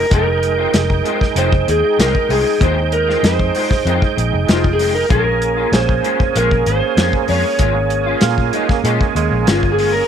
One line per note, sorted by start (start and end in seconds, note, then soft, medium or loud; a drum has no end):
0.00 0.12 A#4 medium
0.10 0.66 F1 medium
0.10 0.27 D#3 medium
0.10 5.06 G#3 medium
0.10 0.26 G#3 medium
0.10 0.26 C4 medium
0.10 5.06 D#4 medium
0.10 0.25 F4 medium
0.10 1.38 A#4 medium
0.10 5.06 G5 medium
0.10 kick loud
0.10 closed hi-hat medium
0.27 muted clean electric guitar stroke soft
0.43 closed hi-hat medium
0.58 0.72 G#3 soft
0.58 0.73 C4 soft
0.58 0.73 F4 medium
0.73 1.01 F1 loud
0.73 muted clean electric guitar stroke soft
0.73 snare loud
0.73 closed hi-hat medium
0.90 kick medium
1.04 1.20 D#3 medium
1.04 1.21 G#3 medium
1.04 1.20 C4 medium
1.04 1.20 F4 medium
1.04 closed hi-hat medium
1.21 muted clean electric guitar stroke soft
1.21 kick medium
1.21 snare soft
1.35 1.63 F1 medium
1.35 1.52 D#3 medium
1.35 1.52 G#3 medium
1.35 1.52 C4 medium
1.35 1.51 F4 medium
1.35 1.69 C5 medium
1.35 closed hi-hat medium
1.52 muted clean electric guitar stroke soft
1.52 kick medium
1.67 1.82 D#2 medium
1.67 1.97 G#4 medium
1.67 muted clean electric guitar stroke soft
1.67 closed hi-hat medium
1.83 muted clean electric guitar stroke soft
1.98 2.13 C2 medium
1.98 2.14 D#3 medium
1.98 2.14 G#3 medium
1.98 2.14 C4 medium
1.98 2.13 F4 medium
1.98 2.31 A#4 medium
1.98 snare loud
1.98 closed hi-hat loud
2.14 muted clean electric guitar stroke soft
2.14 kick medium
2.28 2.43 C2 medium
2.28 2.45 D#3 medium
2.28 2.45 G#3 medium
2.28 2.45 C4 medium
2.28 2.44 F4 medium
2.28 2.62 G#4 medium
2.28 open hi-hat medium
2.45 muted clean electric guitar stroke soft
2.60 3.15 D#2 medium
2.60 2.77 D#3 medium
2.60 2.77 G#3 medium
2.60 2.77 C4 medium
2.60 2.76 F4 medium
2.60 2.94 C5 medium
2.60 kick loud
2.60 closed hi-hat medium
2.77 muted clean electric guitar stroke soft
2.92 3.24 A#4 medium
2.92 closed hi-hat medium
3.08 3.23 G#3 soft
3.08 3.23 C4 soft
3.08 3.23 F4 medium
3.08 snare soft
3.23 3.50 F2 medium
3.23 4.14 C5 medium
3.23 muted clean electric guitar stroke soft
3.23 snare loud
3.23 closed hi-hat medium
3.40 kick medium
3.54 3.70 D#3 medium
3.54 3.71 G#3 medium
3.54 3.70 C4 medium
3.54 3.69 F4 medium
3.54 open hi-hat medium
3.70 muted clean electric guitar stroke soft
3.70 kick medium
3.70 snare soft
3.85 3.99 F2 medium
3.85 4.01 D#3 medium
3.85 4.01 G#3 medium
3.85 4.01 C4 medium
3.85 4.00 F4 medium
3.85 closed hi-hat medium
4.01 muted clean electric guitar stroke medium
4.01 kick medium
4.16 4.31 A#1 medium
4.16 muted clean electric guitar stroke soft
4.16 closed hi-hat medium
4.32 4.46 F1 medium
4.32 muted clean electric guitar stroke soft
4.47 5.03 F1 medium
4.47 4.63 D#3 medium
4.47 4.64 G#3 medium
4.47 4.63 C4 medium
4.47 4.62 F4 medium
4.47 snare loud
4.47 closed hi-hat medium
4.52 4.69 F4 medium
4.64 muted clean electric guitar stroke soft
4.64 kick medium
4.73 4.92 G#4 medium
4.78 4.95 D#3 medium
4.78 4.94 G#3 medium
4.78 4.94 C4 medium
4.78 4.93 F4 medium
4.78 open hi-hat medium
4.94 5.11 A#4 medium
4.94 muted clean electric guitar stroke soft
5.08 5.65 A#1 medium
5.08 5.25 G#3 medium
5.08 10.04 A#3 medium
5.08 10.04 C#4 medium
5.08 5.25 C#4 medium
5.08 5.24 F4 medium
5.08 10.05 G#4 medium
5.08 5.75 A#4 medium
5.08 kick loud
5.08 closed hi-hat medium
5.25 muted clean electric guitar stroke soft
5.42 closed hi-hat soft
5.57 5.71 C#4 soft
5.57 5.71 F4 soft
5.71 5.99 A#1 loud
5.71 muted clean electric guitar stroke soft
5.71 snare loud
5.71 closed hi-hat medium
5.75 6.38 C5 loud
5.89 kick medium
6.03 6.19 G#3 medium
6.03 6.19 C#4 medium
6.03 6.18 F4 medium
6.03 closed hi-hat medium
6.19 muted clean electric guitar stroke soft
6.19 kick medium
6.35 6.62 A#1 medium
6.35 6.51 G#3 medium
6.35 6.50 C#4 medium
6.35 6.50 F4 medium
6.35 6.68 A#4 medium
6.35 closed hi-hat medium
6.51 muted clean electric guitar stroke soft
6.51 kick medium
6.66 6.80 G#1 medium
6.66 7.29 C5 loud
6.66 muted clean electric guitar stroke soft
6.66 closed hi-hat medium
6.82 muted clean electric guitar stroke soft
6.97 7.11 F2 medium
6.97 7.13 G#3 medium
6.97 7.13 C#4 medium
6.97 7.12 F4 medium
6.97 snare loud
6.97 closed hi-hat medium
7.13 muted clean electric guitar stroke soft
7.13 kick medium
7.27 7.43 F2 medium
7.27 7.44 G#3 medium
7.27 7.44 C#4 medium
7.27 7.43 F4 medium
7.27 8.18 C#5 loud
7.27 open hi-hat medium
7.44 muted clean electric guitar stroke soft
7.59 8.14 G#1 medium
7.59 7.75 G#3 medium
7.59 7.75 C#4 medium
7.59 7.74 F4 medium
7.59 kick loud
7.59 closed hi-hat medium
7.76 muted clean electric guitar stroke soft
7.90 closed hi-hat medium
8.06 8.21 C#4 soft
8.06 8.21 F4 medium
8.21 8.49 A#2 loud
8.21 8.56 F4 medium
8.21 muted clean electric guitar stroke soft
8.21 snare loud
8.21 closed hi-hat medium
8.38 kick medium
8.52 8.68 G#3 medium
8.52 8.68 C#4 medium
8.52 8.70 D#4 medium
8.52 8.67 F4 medium
8.52 closed hi-hat medium
8.68 8.83 A#3 medium
8.68 muted clean electric guitar stroke soft
8.68 kick medium
8.68 snare soft
8.84 8.98 A#2 loud
8.84 9.00 G#3 medium
8.84 9.14 G#3 medium
8.84 9.00 C#4 medium
8.84 8.99 F4 loud
8.84 closed hi-hat medium
9.00 muted clean electric guitar stroke medium
9.00 kick medium
9.15 9.29 D#2 medium
9.15 9.46 G#3 medium
9.15 muted clean electric guitar stroke soft
9.15 closed hi-hat medium
9.31 9.45 A#1 medium
9.31 muted clean electric guitar stroke soft
9.46 10.01 G1 medium
9.46 9.62 G#3 medium
9.46 9.62 C#4 medium
9.46 9.61 F4 medium
9.46 snare loud
9.46 closed hi-hat medium
9.51 9.70 F4 medium
9.62 muted clean electric guitar stroke soft
9.62 kick medium
9.72 9.91 G#4 medium
9.77 9.93 G#3 medium
9.77 9.93 C#4 medium
9.77 9.92 F4 medium
9.77 open hi-hat medium
9.92 10.08 A#4 medium
9.92 muted clean electric guitar stroke soft